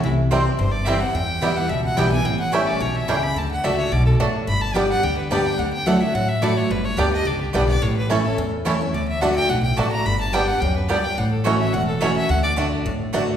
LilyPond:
<<
  \new Staff \with { instrumentName = "Fiddle" } { \time 4/4 \key d \major \tempo 4 = 215 e'8 r4. c''8 d''8 e''8 fis''8 | g''4. fis''8 e''8 fis''8 g''8 gis''8 | g''8 fis''8 e''8 d''8 cis''8 e''8 g''8 b''8 | a''8 fis''8 e''8 cis''8 d''8 a'8 r4 |
b''8 a''8 g''8 fis''8 g''8 b'8 d''8 g''8 | fis''8 g''8 fis''8 e''8 fis''8 e''8 d''8 cis''8 | b'8 cis''8 d''8 ees''8 d''8 g'8 b'8 d''8 | cis''8 b'8 a'8 a'4 r4. |
d''8 e''8 fis''8 g''8 fis''8 g''8 a''8 bes''8 | b''8 a''8 g''8 fis''8 g''8 b'8 d''8 g''8 | fis''8 a'8 cis''8 e''8 fis''8 a'8 cis''8 e''8 | fis''8 d''8 r2. | }
  \new Staff \with { instrumentName = "Mandolin" } { \time 4/4 \key d \major r4 <c' e' c'' g''>8 r4. <c' e' c'' g''>8 r8 | r4 <b e' b' g''>8 r4. <b e' b' g''>8 r8 | r4 <a e' cis'' g''>8 r4. <a e' cis'' g''>8 r8 | r4 <a fis' d'' a''>8 r4. <a fis' d'' a''>8 r8 |
r4 <b g' d'' g''>8 r4. <b g' d'' g''>8 r8 | r4 <a e' d'' fis''>8 r4. <a e' d'' fis''>8 r8 | r4 <b g' d'' g''>8 r4. <b g' d'' g''>8 r8 | r4 <a e' cis'' a''>8 r4. <a e' cis'' a''>8 r8 |
r4 <a fis' d'' a''>8 r4. <a fis' d'' a''>8 r8 | r4 <b g' d'' g''>8 r4. <b g' d'' g''>8 r8 | r4 <a fis' cis'' fis''>8 r4. <a fis' cis'' fis''>8 r8 | r4 <a fis' d'' a''>8 r4. <a fis' d'' a''>8 r8 | }
  \new Staff \with { instrumentName = "Five-string banjo" } { \time 4/4 \key d \major r4 <g c' e'>8 r4. <g c' e'>8 r8 | r4 <g b e'>8 r4. <g b e'>8 r8 | r4 <g cis' e'>8 r4. <g cis' e'>8 r8 | r4 <a d'>8 r4. <a d'>8 r8 |
r4 <g b d'>8 r4. <g b d'>8 r8 | r4 <a d'>8 r4. <a d'>8 r8 | r4 <g b d'>8 r4. <g b d'>8 r8 | r4 <a cis' e'>8 r4. <a cis' e'>8 r8 |
r4 <a d'>8 r4. <a d'>8 r8 | r4 <g b d'>8 r4. <g b d'>8 r8 | r4 <a cis' e'>8 r4. <a cis' e'>8 r8 | r4 <a d'>8 r4. <a d'>8 r8 | }
  \new Staff \with { instrumentName = "Steel-string acoustic guitar" } { \time 4/4 \key d \major << { r4 <e g c' e'>8 <c' e'>8 r4 <e g c' e'>8 <c' e'>8 | r4 <e g b e'>4 r4 <e g b e'>8 <b e'>8 | r4 <e g cis' e'>4 r2 | r4 <d a d' fis'>4 r2 |
r4 <g b d' g'>4 r4 <g b d' g'>4 | r4 <fis a e' fis'>8 <e' fis'>8 r4 <fis a e' fis'>4 | r4 <g b d' g'>4 r4 <g b d' g'>8 <d' g'>8 | r4 <e a cis' e'>8 <cis' e'>8 r4 <e a cis' e'>8 <cis' e'>8 |
r4 <d a d' fis'>4 r4 <d a d' fis'>4 | r4 <g b d' g'>4 r2 | r4 <e a cis' fis'>4 r4 <e a cis' fis'>4 | r4 <d a d' fis'>4 r4 <d a d' fis'>4 | } \\ { c2 g,2 | e,2 b,2 | a,2 b,4 cis4 | d2 b,4 a,4 |
g,2 d2 | d2 a,2 | g,2 d2 | a,2 e,2 |
d2 a,2 | g,2 fis,4 g,4 | a,2 e,2 | d2 a,2 | } >> }
  \new Staff \with { instrumentName = "Upright bass" } { \clef bass \time 4/4 \key d \major c,2 g,,2 | e,2 cis,4 b,,4 | a,,2 b,,4 cis,4 | d,4 cis,4 b,,4 a,,4 |
g,,2 d,2 | d,2 a,,2 | g,,4 d,4 cis,4 b,,4 | a,,2 e,2 |
d,2 b,,4 a,,4 | g,,2 d,2 | a,,2 e,,2 | d,2 a,,2 | }
>>